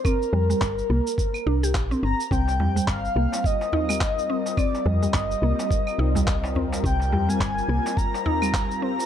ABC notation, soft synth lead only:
X:1
M:4/4
L:1/16
Q:"Swing 16ths" 1/4=106
K:Cm
V:1 name="Soft synth lead"
B12 z2 b2 | g4 f4 e8 | d2 e12 z2 | g3 a4- a b6 b2 |]